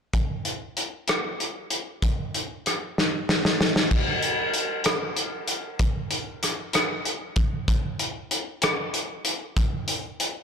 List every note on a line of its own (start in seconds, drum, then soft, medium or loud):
0.13 kick medium
0.13 closed hi-hat soft
0.45 closed hi-hat soft
0.77 closed hi-hat soft
1.08 cross-stick medium
1.08 closed hi-hat soft
1.40 closed hi-hat soft
1.70 closed hi-hat soft
2.02 kick medium
2.02 closed hi-hat medium
2.35 closed hi-hat soft
2.66 cross-stick soft
2.66 closed hi-hat soft
2.98 snare soft
3.29 snare soft
3.45 snare soft
3.61 snare medium
3.76 snare soft
3.91 kick medium
3.91 crash medium
4.22 closed hi-hat soft
4.54 closed hi-hat soft
4.84 cross-stick medium
4.84 closed hi-hat soft
5.17 closed hi-hat soft
5.48 closed hi-hat soft
5.79 kick medium
5.79 closed hi-hat medium
6.11 closed hi-hat soft
6.43 cross-stick soft
6.43 closed hi-hat medium
6.73 cross-stick medium
6.73 closed hi-hat medium
7.05 closed hi-hat soft
7.36 kick medium
7.36 closed hi-hat soft
7.68 kick medium
7.68 closed hi-hat medium
7.99 closed hi-hat soft
8.31 closed hi-hat soft
8.62 cross-stick medium
8.62 closed hi-hat medium
8.94 closed hi-hat soft
9.25 closed hi-hat soft
9.57 kick medium
9.57 closed hi-hat medium
9.88 closed hi-hat soft
10.20 closed hi-hat soft